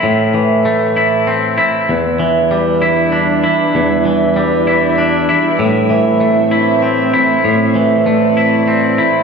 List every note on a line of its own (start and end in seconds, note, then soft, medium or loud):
0.00 1.58 A2 soft
0.00 0.34 E3 soft
0.00 0.35 A3 soft
0.00 0.97 C4 soft
0.00 0.96 E4 soft
0.34 2.19 E3 soft
0.65 1.89 A3 soft
0.97 1.57 E4 soft
1.27 1.89 C4 soft
1.58 2.81 E4 soft
1.89 3.44 E2 soft
1.89 5.56 G3 medium
1.89 5.56 D4 medium
1.89 9.23 E4 medium
1.89 5.56 B4 medium
1.89 7.41 E5 medium
2.20 4.05 E3 soft
2.51 4.05 G3 soft
2.82 3.43 E4 soft
3.12 4.67 D4 soft
3.44 4.67 E4 soft
3.75 5.29 E2 medium
4.05 5.90 E3 soft
4.36 5.60 G3 soft
4.67 5.29 E4 soft
4.98 5.60 D4 soft
5.29 6.51 E4 soft
5.59 7.14 A2 medium
5.59 9.23 A3 medium
5.59 9.23 C4 medium
5.59 9.23 C5 medium
5.90 7.75 E3 soft
6.20 7.75 A3 soft
6.51 7.12 E4 soft
6.82 8.37 C4 soft
7.14 8.36 E4 soft
7.45 8.99 A2 soft
7.45 9.23 D5 medium
7.75 9.23 E3 soft
8.06 9.23 A3 medium
8.37 8.97 E4 soft
8.68 9.23 C4 soft
8.98 9.23 E4 medium